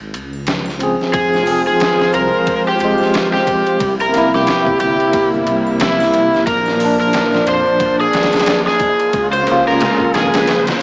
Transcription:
0.00 G#1, shaker
0.14 C#2, ride, shaker
0.33 triangle, shaker
0.46 snare, ride, shaker
0.66 snare, triangle
0.79 F3 C4, ride, shaker
0.83 G#4
1.00 snare, shaker
1.13 F1 F3 G#3 F4 G#4 C5, kick, ride, shaker
1.34 snare, triangle
1.43 F3, shaker
1.47 C4, open hi-hat
1.51 G#4
1.66 F1 G#4, shaker
1.79 snare, ride, shaker
1.99 snare, shaker
2.12 C2 A#4, ride, shaker
2.32 shaker
2.45 kick, ride, shaker
2.66 G4, shaker
2.75 F3
2.79 C2 C4, ride, shaker
2.84 G#3
2.98 snare, triangle, shaker
3.13 snare, ride, shaker
3.33 G4, snare
3.47 kick, ride, shaker
3.66 ride, shaker
3.79 C2 C3 G3 A#3 E4, kick, ride, shaker
4.00 A#4, ride, triangle
4.09 C3
4.13 A#3, snare, ride, shaker
4.18 E4
4.33 C2 G4, snare, shaker
4.47 snare, ride, shaker
4.66 kick, shaker
4.79 G1 G4, ride, shaker
5.00 ride, shaker
5.13 kick, ride, shaker
5.33 G1, shaker
5.46 C2, ride, shaker
5.67 triangle, shaker
5.80 E4, snare, ride, shaker
6.00 snare, triangle
6.13 ride, shaker
6.33 snare, shaker
6.46 A#1 F3 D4 A#4, kick, ride, riser, shaker
6.66 snare, triangle
6.76 A#2, shaker
6.80 F3, open hi-hat
6.85 D4
6.99 A#1 A#4, shaker
7.12 snare, ride, shaker
7.32 snare, shaker
7.46 F2 C5, ride, shaker
7.66 shaker
7.80 kick, ride, shaker
8.00 G#4, shaker
8.13 G#1, snare, ride, shaker
8.23 snare, ride
8.32 snare, ride, triangle, shaker
8.39 snare, ride
8.46 snare, ride, shaker
8.67 G#4, snare
8.80 kick, ride, shaker
8.99 ride, shaker
9.13 C#2 C#3 G#3 F4, kick, ride, shaker
9.33 C5, ride, triangle, shaker
9.43 C#3
9.47 A#3, snare, ride, shaker
9.51 F4
9.66 C#2 A#4, snare, shaker
9.79 snare, ride, shaker
10.00 kick, shaker
10.13 G#1 G#4, snare, ride, shaker
10.33 snare, ride, shaker
10.47 snare, ride, shaker
10.67 snare, ride, shaker

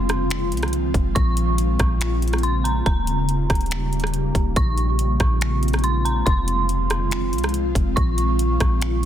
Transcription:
Already playing: F1 D#3 F3 G#3 C4 F4 C6
0.09 cross-stick, closed hi-hat
0.30 finger snap, closed hi-hat
0.52 C2, closed hi-hat
0.57 closed hi-hat
0.63 cross-stick, closed hi-hat
0.68 closed hi-hat
0.73 closed hi-hat
0.94 F1, kick, closed hi-hat
1.15 A#1 C#3 A#3 C#6, kick, closed hi-hat
1.37 closed hi-hat
1.58 closed hi-hat
1.79 A#1, kick, cross-stick, closed hi-hat
2.01 finger snap, closed hi-hat
2.22 closed hi-hat
2.28 closed hi-hat
2.33 cross-stick, closed hi-hat
2.38 closed hi-hat
2.43 C6, closed hi-hat
2.64 A#5, closed hi-hat
2.86 D#1 G3 A#3 D#4 G4 A#5, kick, closed hi-hat
3.07 closed hi-hat
3.29 closed hi-hat
3.50 D#1, kick, cross-stick, closed hi-hat
3.55 closed hi-hat
3.61 closed hi-hat
3.66 closed hi-hat
3.71 finger snap, closed hi-hat
3.93 closed hi-hat
4.00 closed hi-hat
4.04 cross-stick, closed hi-hat
4.14 closed hi-hat
4.35 D#1, kick, closed hi-hat
4.56 A#1 G#3 C4 F4 C#6, kick, closed hi-hat
4.78 closed hi-hat
4.99 closed hi-hat
5.20 A#1, kick, cross-stick, closed hi-hat
5.41 finger snap, closed hi-hat
5.63 closed hi-hat
5.68 closed hi-hat
5.73 cross-stick, closed hi-hat
5.79 closed hi-hat
5.84 C6, closed hi-hat
6.05 A#5, closed hi-hat
6.26 F1 D#3 F3 C4 F4 C6, kick, closed hi-hat
6.48 closed hi-hat
6.69 closed hi-hat
6.90 cross-stick, closed hi-hat
7.11 finger snap, closed hi-hat
7.33 C2, closed hi-hat
7.38 closed hi-hat
7.44 cross-stick, closed hi-hat
7.49 closed hi-hat
7.54 closed hi-hat
7.75 F1, kick, closed hi-hat
7.96 A#1 C#3 A#3 C#6, kick, closed hi-hat
8.18 closed hi-hat
8.39 closed hi-hat
8.60 A#1, kick, cross-stick, closed hi-hat
8.82 finger snap, closed hi-hat

